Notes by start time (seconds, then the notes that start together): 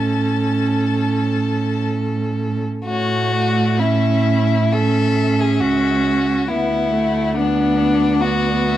Already playing: A2 C#4 A4 A5
2.86 A2 A3 F#4 C#5
3.32 D5
3.78 C#4 E4 E5
4.72 C#4 A4 E5
5.41 G#4
5.60 C#2 F#4
6.48 D2 B3 E4 F#5
6.93 A3
7.37 B3 D4 F#5
8.21 B3 F#4 D5
8.67 E5